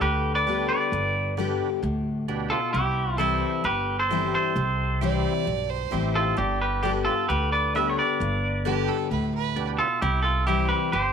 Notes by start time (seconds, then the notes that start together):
0.01 D2 G4 B4
0.35 B4 D5
0.46 D3 G3 B3 D4 G4 B4
0.69 B4 D5
0.92 G1 G2
1.37 D3 G3 B3 D4 G4 B4
1.82 D2 A2
2.28 B2 D4 G4 B4
2.50 F4 A4
2.73 C2 C3 E4 G4
3.18 E3 G3 C4 E4 G4 A4 C5
3.64 G1 G2 G4 B4
3.99 A4 C5
4.10 E3 G3 C4 E4 G4 C5
4.34 A4 C5
4.56 C2 C3
5.01 E3 G3 C4 E4 G4 C5 D5
5.47 B1 G2
5.69 C5
5.91 A1 E3 G3 C4 E4 G4 C5
6.15 F4 A4
6.37 G1 G2 D4 G4
6.61 G4 B4
6.83 D3 G3 B3 D4 G4 B4
7.05 B3 F4 G4 A4
7.28 D2 D3 G4 B4
7.52 B4 D5
7.74 D3 G3 B3 D4 G4 B4 E5
7.89 C#5
7.98 B4 D5
8.20 G1 G2
8.65 D3 G3 B3 D4 G4 B4
8.88 A4
9.11 D2 A2 B4
9.34 B4
9.56 B2 D4 G4 B4
9.79 F4 A4
10.02 C2 C3 E4 G4
10.22 F4 A4
10.47 E3 G3 C4 E4 G4 C5
10.69 G4 B4
10.92 G1 G2 G4 C5